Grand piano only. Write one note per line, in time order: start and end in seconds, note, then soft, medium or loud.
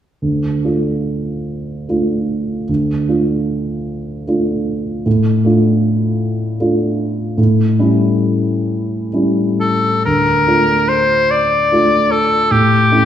0.22 0.63 D2 soft
0.64 1.86 A3 soft
0.64 1.86 D4 soft
0.64 1.86 F4 soft
1.89 2.64 A3 soft
1.89 2.64 D4 soft
1.89 2.65 F4 soft
2.69 3.08 D2 soft
3.08 4.23 A3 soft
3.08 4.23 D4 soft
3.08 4.23 F4 soft
4.27 5.02 A3 soft
4.27 5.02 D4 soft
4.27 5.02 F4 soft
5.06 5.44 A2 soft
5.45 6.56 A3 soft
5.45 6.56 D4 soft
5.45 6.56 F4 soft
6.60 7.34 A3 soft
6.60 7.34 D4 soft
6.60 7.34 F4 soft
7.38 7.78 A2 soft
7.79 9.08 G3 soft
7.79 9.08 C#4 soft
7.79 9.09 E4 soft
9.13 10.02 G3 soft
9.13 10.02 C#4 soft
9.13 10.03 E4 soft
10.06 10.46 D2 soft
10.47 11.67 A3 soft
10.47 11.68 D4 soft
10.47 11.68 F4 soft
11.72 12.47 A3 soft
11.72 12.47 D4 soft
11.72 12.47 F4 soft
12.51 12.89 A2 soft
12.91 13.05 A3 soft
12.91 13.05 C#4 soft
12.91 13.05 E4 soft